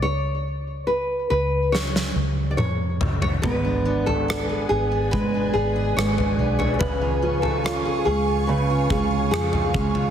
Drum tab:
SD |--------oo------|----r-------r---|----r-------r---|
T2 |------------o---|----------------|----------------|
FT |--------------oo|o--o---------o-o|o--o---------o-o|
BD |----------------|o-------o-------|o---------o---o-|